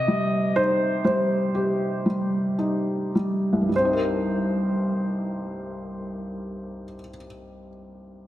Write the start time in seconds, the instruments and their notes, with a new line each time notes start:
Already playing: felt piano C3, grand piano D#5
0.08 felt piano G3
0.56 felt piano D#4, grand piano C5
1.04 felt piano G3, grand piano C5
1.55 felt piano G4
2.06 felt piano G3
2.59 felt piano D#4
3.15 felt piano G3
3.53 felt piano C2
3.61 felt piano G2
3.69 felt piano G3
3.76 felt piano C4, grand piano C5
3.85 felt piano D#4
3.93 felt piano A#4